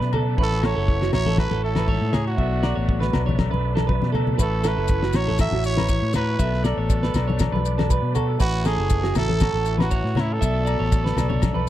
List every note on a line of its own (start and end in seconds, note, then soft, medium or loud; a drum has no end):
0.00 0.38 F#2 medium
0.00 0.35 B2 medium
0.00 0.43 F#3 medium
0.00 0.39 A3 medium
0.00 0.36 D4 medium
0.00 0.13 F#4 medium
0.00 0.13 B4 medium
0.00 0.37 B4 medium
0.00 0.37 D5 medium
0.00 6.37 E5 medium
0.00 snare soft
0.13 0.40 A4 medium
0.13 0.38 A4 medium
0.13 low conga medium
0.13 low agogo medium
0.37 0.73 A1 loud
0.37 1.36 A2 medium
0.37 2.36 C#4 medium
0.37 1.12 E4 medium
0.37 0.62 F#4 medium
0.37 0.62 B4 loud
0.37 2.36 C#5 medium
0.37 2.36 F#5 medium
0.37 kick medium
0.43 0.67 A4 loud
0.52 snare soft
0.63 1.37 F#4 medium
0.63 0.75 A4 medium
0.63 1.14 C#5 loud
0.63 snare medium
0.63 low agogo medium
0.76 1.10 F#1 medium
0.76 1.00 A4 medium
0.87 2.38 E3 medium
0.87 kick medium
1.02 1.26 F#4 medium
1.02 snare medium
1.13 1.48 A1 loud
1.13 1.63 E4 medium
1.13 1.37 C#5 loud
1.13 snare medium
1.13 low conga medium
1.13 low agogo medium
1.26 1.50 A4 medium
1.26 high conga medium
1.37 1.88 A2 medium
1.37 3.39 F#4 medium
1.37 1.62 B4 loud
1.37 kick medium
1.37 snare medium
1.37 high conga medium
1.37 low agogo medium
1.51 1.98 A1 medium
1.51 1.75 A4 medium
1.51 snare soft
1.51 high conga medium
1.64 2.36 E4 medium
1.64 2.15 A4 medium
1.76 1.88 B4 medium
1.76 snare medium
1.76 high conga medium
1.76 low agogo medium
1.88 2.12 G#2 medium
1.88 2.12 C#5 medium
1.88 kick medium
2.02 2.35 A2 loud
2.12 2.38 A2 medium
2.12 2.27 G#4 medium
2.12 2.37 C#5 medium
2.12 snare medium
2.12 low conga medium
2.12 low agogo medium
2.27 3.23 F#4 medium
2.37 2.73 B1 loud
2.37 3.38 B2 medium
2.37 4.39 A3 medium
2.37 2.62 D4 medium
2.37 4.37 B4 medium
2.37 4.38 D5 medium
2.37 2.62 E5 medium
2.37 kick medium
2.63 3.13 D4 medium
2.63 2.75 D5 medium
2.63 snare medium
2.63 low agogo medium
2.75 3.11 A1 loud
2.75 3.00 C#5 medium
2.87 3.88 F#3 medium
2.87 kick loud
3.00 3.25 B4 medium
3.00 snare medium
3.13 3.49 B1 loud
3.13 3.63 D4 medium
3.13 snare medium
3.13 low conga medium
3.13 low agogo medium
3.26 3.50 C#5 medium
3.26 high conga medium
3.26 low conga medium
3.38 4.38 F#2 medium
3.38 4.14 A4 medium
3.38 kick medium
3.38 snare medium
3.38 high conga medium
3.38 low agogo medium
3.51 3.99 B1 medium
3.51 3.75 B4 medium
3.51 high conga medium
3.65 4.37 D4 medium
3.75 3.87 A4 medium
3.75 snare medium
3.75 high conga medium
3.75 low agogo medium
3.87 4.42 F#3 medium
3.87 4.12 B4 medium
3.87 kick medium
3.87 high conga medium
4.02 4.36 B2 medium
4.02 snare soft
4.02 high conga medium
4.12 4.37 A4 medium
4.12 4.39 A4 medium
4.12 low conga medium
4.12 low agogo medium
4.27 low conga medium
4.38 4.74 A1 loud
4.38 5.39 A2 medium
4.38 5.14 C#4 medium
4.38 5.14 E4 medium
4.38 4.64 F#4 medium
4.38 4.63 B4 medium
4.38 6.39 C#5 medium
4.38 6.39 F#5 medium
4.38 kick medium
4.38 maracas medium
4.42 4.69 A4 loud
4.63 5.40 F#4 medium
4.63 4.76 A4 medium
4.63 snare medium
4.63 low agogo medium
4.63 maracas medium
4.68 5.18 B4 medium
4.76 5.10 F#1 medium
4.76 5.01 A4 medium
4.88 5.88 E3 medium
4.88 kick loud
4.88 maracas loud
5.02 5.26 F#4 medium
5.02 snare medium
5.13 5.48 A1 loud
5.13 5.27 C#4 medium
5.13 5.40 C#5 loud
5.13 snare medium
5.13 low agogo medium
5.13 maracas medium
5.27 5.63 E4 medium
5.27 5.51 A4 medium
5.27 high conga medium
5.38 6.37 A2 medium
5.38 6.15 F#4 medium
5.38 5.64 E5 loud
5.38 kick medium
5.38 snare medium
5.38 high conga medium
5.38 low agogo medium
5.38 maracas loud
5.51 5.98 A1 medium
5.51 5.76 F#4 medium
5.51 high conga medium
5.64 6.37 E4 medium
5.64 6.12 C#5 loud
5.64 maracas medium
5.77 5.88 B4 medium
5.77 snare medium
5.77 high conga medium
5.77 low agogo medium
5.88 6.39 E3 medium
5.88 6.13 C#5 medium
5.88 kick medium
5.88 maracas loud
6.02 6.36 A2 medium
6.13 6.42 F#4 medium
6.13 6.62 B4 loud
6.13 6.38 C#5 medium
6.13 snare medium
6.13 low conga medium
6.13 low agogo medium
6.13 maracas medium
6.39 6.74 B1 loud
6.39 7.40 B2 medium
6.39 8.39 A3 medium
6.39 8.14 A4 medium
6.39 8.39 B4 medium
6.39 8.39 D5 medium
6.39 6.63 E5 medium
6.39 muted clean electric guitar stroke medium
6.39 kick medium
6.39 maracas loud
6.53 snare soft
6.64 7.13 D4 medium
6.64 7.62 A4 medium
6.64 6.77 D5 medium
6.64 snare medium
6.64 low agogo medium
6.64 maracas medium
6.77 7.11 A1 medium
6.77 7.02 C#5 medium
6.90 7.89 F#3 medium
6.90 kick medium
6.90 maracas loud
7.03 7.27 B4 medium
7.03 snare medium
7.14 7.49 B1 loud
7.14 7.39 D4 medium
7.14 snare medium
7.14 low conga medium
7.14 low agogo medium
7.14 maracas medium
7.28 7.52 C#5 medium
7.28 high conga medium
7.39 7.64 D4 medium
7.39 muted clean electric guitar stroke medium
7.39 kick medium
7.39 snare medium
7.39 high conga medium
7.39 low agogo medium
7.39 maracas loud
7.52 7.99 B1 medium
7.52 7.77 B4 medium
7.52 high conga medium
7.65 8.37 D4 medium
7.65 maracas medium
7.78 7.89 A4 medium
7.78 snare medium
7.78 high conga medium
7.78 low agogo medium
7.89 8.43 F#3 medium
7.89 8.14 B4 medium
7.89 kick medium
7.89 maracas medium
8.02 8.36 B2 medium
8.15 8.27 F#4 medium
8.15 8.39 A4 medium
8.15 low conga medium
8.15 low agogo medium
8.15 maracas medium
8.27 8.40 A4 medium
8.38 8.75 A1 loud
8.38 9.40 A2 medium
8.38 10.15 C#4 medium
8.38 9.15 E4 medium
8.38 8.68 F#4 loud
8.38 8.64 B4 medium
8.38 10.39 C#5 medium
8.38 10.40 F#5 medium
8.38 kick medium
8.38 maracas medium
8.65 9.41 F#4 medium
8.65 9.16 G#4 loud
8.65 8.77 A4 medium
8.65 snare medium
8.65 low agogo medium
8.65 maracas medium
8.78 9.12 F#1 loud
8.78 9.02 A4 medium
8.89 9.89 E3 medium
8.89 kick medium
8.89 maracas medium
9.03 9.27 F#4 medium
9.03 snare medium
9.15 9.50 A1 loud
9.15 9.65 E4 medium
9.15 9.76 A4 loud
9.15 snare medium
9.15 low conga medium
9.15 low agogo medium
9.15 maracas medium
9.29 9.52 A4 medium
9.29 high conga medium
9.40 10.39 A2 medium
9.40 11.69 F#4 medium
9.40 kick medium
9.40 snare medium
9.40 high conga medium
9.40 low agogo medium
9.40 maracas medium
9.53 10.00 A1 medium
9.53 9.77 A4 medium
9.53 snare soft
9.66 10.39 E4 medium
9.66 maracas medium
9.78 9.90 B4 medium
9.78 snare medium
9.78 high conga medium
9.78 low agogo medium
9.83 10.22 F#4 loud
9.90 10.41 E3 medium
9.90 10.15 C#5 medium
9.90 kick medium
9.90 maracas medium
10.04 10.38 A2 medium
10.04 snare soft
10.15 10.39 C#4 medium
10.15 10.40 C#5 medium
10.15 snare medium
10.15 low conga medium
10.15 low agogo medium
10.20 10.35 E4 medium
10.33 11.69 A4 loud
10.40 10.76 B1 loud
10.40 11.42 B2 medium
10.40 11.69 A3 medium
10.40 10.67 D4 medium
10.40 11.69 D5 medium
10.40 10.65 E5 loud
10.40 11.69 B5 medium
10.40 kick medium
10.40 maracas medium
10.65 10.79 D5 medium
10.65 low agogo medium
10.65 maracas medium
10.79 11.13 A1 loud
10.79 11.04 C#5 medium
10.92 11.69 F#3 medium
10.92 kick medium
10.92 maracas medium
11.04 11.29 B4 medium
11.04 snare medium
11.16 11.52 B1 loud
11.16 11.42 D4 medium
11.16 snare medium
11.16 low conga medium
11.16 low agogo medium
11.16 maracas medium
11.29 11.54 C#5 medium
11.29 high conga medium
11.29 low conga medium
11.42 11.69 F#2 medium
11.42 11.68 D4 medium
11.42 kick loud
11.42 snare medium
11.42 high conga medium
11.42 low agogo medium
11.42 maracas loud
11.54 11.66 B1 medium
11.54 11.69 B4 medium
11.54 high conga medium